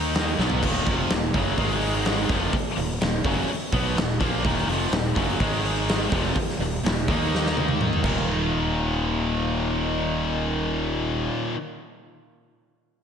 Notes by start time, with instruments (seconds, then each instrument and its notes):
Already playing: fingered electric bass D#2, distorted electric guitar D#3 A#3 D#4
0.15 snare, open hi-hat
0.39 fingered electric bass B1, distorted electric guitar B2 F#3 B3, snare
0.50 floor tom
0.63 fingered electric bass D#1, distorted electric guitar D#2 A#2 D#3, kick, crash
0.76 snare
0.87 fingered electric bass F1, distorted electric guitar F2 C3 F3, kick, open hi-hat
1.10 fingered electric bass D#1, distorted electric guitar D#2 A#2, snare, open hi-hat
1.34 fingered electric bass F#1, distorted electric guitar F#2 C#3 F#3, kick, open hi-hat
1.58 fingered electric bass G#1, distorted electric guitar G#2 D#3 G#3, kick, open hi-hat
1.81 open hi-hat
2.05 snare, open hi-hat
2.29 fingered electric bass F1, distorted electric guitar F2 C3 F3, kick, snare, open hi-hat
2.53 muted fingered electric bass stroke, muted overdriven electric guitar stroke, muted distorted electric guitar stroke, kick, open hi-hat
2.77 fingered electric bass D#1, distorted electric guitar D#2 A#2, open hi-hat
3.01 fingered electric bass D#1, distorted electric guitar D#2 A#2, snare, open hi-hat
3.24 fingered electric bass F#1, distorted electric guitar F#2 C#3 F#3, kick, open hi-hat
3.48 muted fingered electric bass stroke, muted overdriven electric guitar stroke, muted distorted electric guitar stroke, open hi-hat
3.73 fingered electric bass B1, distorted electric guitar B2 F#3 B3, kick, open hi-hat
3.95 fingered electric bass D#1, distorted electric guitar D#2 A#2, snare, open hi-hat
4.20 fingered electric bass A#1, distorted electric guitar A#2 F3 A#3, kick, snare, open hi-hat
4.44 fingered electric bass D#1, distorted electric guitar D#2 A#2 D#3, kick, open hi-hat
4.58 snare
4.67 fingered electric bass F1, distorted electric guitar F2 C3 F3, open hi-hat
4.91 fingered electric bass D#1, distorted electric guitar D#2 A#2, snare, open hi-hat
5.15 fingered electric bass F#1, distorted electric guitar F#2 C#3 F#3, kick, open hi-hat
5.40 fingered electric bass G#1, distorted electric guitar G#2 D#3 G#3, kick, open hi-hat
5.65 open hi-hat
5.89 snare, open hi-hat
6.11 fingered electric bass F1, distorted electric guitar F2 C3 F3, kick, snare, open hi-hat
6.36 muted distorted electric guitar stroke, muted overdriven electric guitar stroke, kick, open hi-hat
6.49 snare
6.59 fingered electric bass D#1, distorted electric guitar D#2 A#2, open hi-hat
6.84 fingered electric bass D#1, distorted electric guitar D#2 A#2, snare, open hi-hat
7.08 fingered electric bass D#2, distorted electric guitar D#3 A#3 D#4, kick, open hi-hat
7.35 snare
7.46 snare
7.57 high tom
7.68 high tom
7.81 mid tom
7.93 mid tom
8.03 fingered electric bass D#1, distorted electric guitar D#2 A#2 D#3, kick, crash